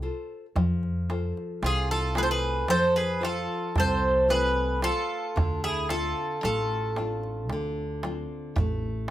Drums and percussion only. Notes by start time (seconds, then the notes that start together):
0.56 darbuka dum
0.83 darbuka tek
1.10 darbuka tek
1.37 darbuka tek
1.63 darbuka tek
2.15 darbuka tek
2.43 darbuka tek
2.68 darbuka tek
3.23 darbuka tek
3.76 darbuka dum
4.30 darbuka tek
4.82 darbuka tek
5.37 darbuka dum
5.64 darbuka tek
5.89 darbuka tek
6.17 darbuka tek
6.43 darbuka tek
6.96 darbuka tek
7.23 darbuka tek
7.50 darbuka tek
8.03 darbuka tek
8.56 darbuka dum